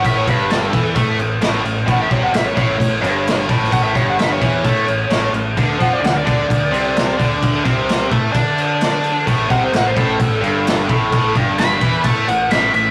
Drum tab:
CC |x-x-x-x-x-x-x-x-|x-x-x-x-x-x-x-x-|x-x-x-x-x-x-x-x-|x-x-x-x-x-x-x-x-|
SD |----o-------o---|----o-------o--o|----o-------o---|----o-------o---|
BD |o-o---o-o-------|o-o---o-o-----o-|o-o---o-o-------|o-o---o-o-----o-|

CC |x-x-x-x-x-x-x-x-|x-x-x-x-x-x-x-x-|x-x-x-x-x-x-x-x-|
SD |----o-------o---|----o-------o---|----o-------o---|
BD |o-o---o-o-------|o-o---o-o-----o-|o-o---o-o-------|